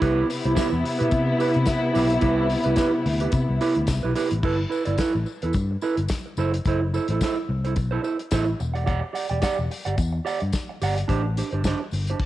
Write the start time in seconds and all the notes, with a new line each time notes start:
0.00 C2 C3 B3 E4 G4 B4, kick, closed hi-hat
0.29 muted clean electric guitar stroke, open hi-hat, tambourine
0.44 C2 E4 G4 C5, closed hi-hat
0.55 E4 G4 B4, kick, snare, closed hi-hat, tambourine
0.72 E2, muted clean electric guitar stroke
0.84 muted clean electric guitar stroke, open hi-hat
0.99 B2 E4 G4 B4, closed hi-hat
1.11 C3, muted clean electric guitar stroke, kick, closed hi-hat, tambourine
1.27 muted clean electric guitar stroke
1.39 E4 G4 B4, open hi-hat, tambourine
1.54 C3, muted clean electric guitar stroke, closed hi-hat
1.66 muted clean electric guitar stroke, kick, snare, closed hi-hat, tambourine
1.82 muted clean electric guitar stroke
1.93 B1 E4 G4 B4, open hi-hat, tambourine
2.09 muted clean electric guitar stroke, closed hi-hat
2.21 C2 E4 G4 B4, kick, closed hi-hat
2.50 muted clean electric guitar stroke, open hi-hat, tambourine
2.64 C2 E4 G4 B4, closed hi-hat
2.76 E4 G4 B4, kick, snare, closed hi-hat, tambourine
2.94 muted clean electric guitar stroke
3.05 D2, muted clean electric guitar stroke, open hi-hat
3.20 E4 G4 B4, closed hi-hat
3.32 C3, muted clean electric guitar stroke, kick, closed hi-hat, tambourine
3.49 C2, muted clean electric guitar stroke
3.61 E4 G4 B4, open hi-hat, tambourine
3.75 D2, muted clean electric guitar stroke, closed hi-hat
3.87 C2, muted clean electric guitar stroke, kick, snare, closed hi-hat, tambourine
4.03 B1 E4 G4 B4
4.15 E4 G4 B4, open hi-hat, tambourine
4.31 A1, muted clean electric guitar stroke, closed hi-hat
4.43 G1 E4 A4 B4, kick, crash
4.58 muted clean electric guitar stroke
4.70 E4 A4 B4, tambourine
4.85 G1 E4 A4 D5, closed hi-hat
4.98 E4 A4 B4, kick, snare, closed hi-hat, tambourine
5.15 A1, muted clean electric guitar stroke
5.26 muted clean electric guitar stroke, tambourine
5.42 E2 E4 A4 B4, closed hi-hat
5.53 G2, muted clean electric guitar stroke, kick, closed hi-hat, tambourine
5.71 muted clean electric guitar stroke
5.81 E4 A4 B4, tambourine
5.97 G1, muted clean electric guitar stroke, closed hi-hat
6.08 kick, snare, closed hi-hat, tambourine
6.26 muted clean electric guitar stroke
6.37 F#1 E4 A4 C5, tambourine
6.54 muted clean electric guitar stroke, closed hi-hat
6.65 F#1 E4 A4 C5, kick, closed hi-hat, tambourine
6.83 muted clean electric guitar stroke
6.94 E4 A4 C5, tambourine
7.08 A1 E4 A4 C5, closed hi-hat
7.21 E4 A4 C5, kick, snare, closed hi-hat, tambourine
7.38 muted clean electric guitar stroke
7.49 C2, muted clean electric guitar stroke
7.64 E4 A4 C5, closed hi-hat
7.76 B1, muted clean electric guitar stroke, kick, closed hi-hat, tambourine
7.91 E4 A4 C5
8.03 E4 A4 C5, tambourine
8.19 muted clean electric guitar stroke, closed hi-hat
8.31 A1 E4 A4 C5, kick, snare, closed hi-hat, tambourine
8.47 muted clean electric guitar stroke
8.59 E1, muted clean electric guitar stroke, tambourine
8.73 G4 D5 F#5, closed hi-hat
8.86 G4 D5 F#5, kick, closed hi-hat
9.02 muted clean electric guitar stroke
9.13 G4 D5 F#5, open hi-hat, tambourine
9.29 E1 G4 D5 G5, closed hi-hat
9.42 G4 D5 F#5, kick, snare, closed hi-hat, tambourine
9.58 E1, muted clean electric guitar stroke
9.70 muted clean electric guitar stroke, open hi-hat, tambourine
9.85 G1 G4 D5 F#5, closed hi-hat
9.98 E2, muted clean electric guitar stroke, kick, closed hi-hat, tambourine
10.13 muted clean electric guitar stroke
10.25 G4 D5 F#5, open hi-hat, tambourine
10.40 G2, muted clean electric guitar stroke, closed hi-hat
10.53 kick, snare, closed hi-hat, tambourine
10.69 muted clean electric guitar stroke
10.81 G1 G4 D5 F#5, open hi-hat, tambourine
10.97 muted clean electric guitar stroke, closed hi-hat
11.08 A1 D4 G4 C5, kick, closed hi-hat
11.24 muted clean electric guitar stroke
11.37 D4 G4 C5, open hi-hat, tambourine
11.51 G1 D4 G4 C5, closed hi-hat
11.64 D4 G4 C5, kick, snare, closed hi-hat, tambourine
11.82 muted clean electric guitar stroke
11.91 G1, muted clean electric guitar stroke, open hi-hat, tambourine
12.07 D4 G4 C5, closed hi-hat
12.20 kick, crash